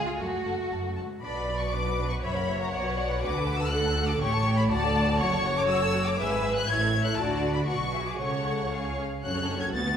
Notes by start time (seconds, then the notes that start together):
Already playing: G#3
0.06 F4
0.17 F#1 F#2 A3 F#4 A5
0.45 F#1 F#2 A5
0.70 F#1 F#2 A5
0.95 F#1 G#2 A5
1.21 B1 B2 D4 D5 B5
1.35 F#4 B4
1.49 D4 D5
1.59 F#4 B4 C#6
1.72 D4 B4 D5 D6
1.87 F#4 B4
1.99 D4 D5
2.09 F#4 B4 C#6
2.22 F#1 F#2 C#5 E5 B5
2.36 A#4 F#5
2.48 C#5 E5
2.60 A#4 F#5 A#5
2.71 B1 B2 F#4 D5 F#5
2.84 B4 F#5
2.97 F#4 D5
3.09 B4 F#5
3.21 D2 D3 F#4 B4 F#5 D6
3.35 A4 A5
3.47 F#4 F#5
3.58 A4 A5 E6
3.70 F#4 A4 F#5 F#6
3.86 A4 A5
3.97 F#4 F#5
4.07 A4 A5 D6
4.21 A1 A2 G4 C#5 G5 C#6
4.32 A4 A5
4.46 G4 G5
4.57 A4 A5 B5
4.69 D2 F#4 D5 F#5 A5
4.82 A4 A5
4.95 F#4 F#5
5.07 A4 A5
5.19 F#1 F#2 F#4 C#5 F#5 C#6
5.31 A4 A5
5.44 F#4 F#5
5.56 A4 A5 D6
5.68 F#4 F#5 E6
5.81 A4 A5
5.93 F#4 F#5
6.05 A4 A5 D6
6.18 G#1 G#2 G#4 B4 E5 E6
6.31 B4 G#5
6.43 G#4 E5
6.55 B4 G#5 F#6
6.68 A1 A2 E4 C#5 E5 G#6
6.81 A4 C#5
6.93 C#5 E5
7.04 A4 C#5 F#6
7.15 D2 D3 F#4 D5 A5
7.54 B5
7.65 B1 B2 F#4 D5 C#6
7.93 G#4 E5
8.06 D6
8.18 C#2 C#3 A4 C#5 F#5 C#6
8.73 G#4 F5
9.24 F#1 F#2 C#4 F#4 A4 C#5 F#6
9.61 G#6
9.73 D2 B3 F#4 F#5 A6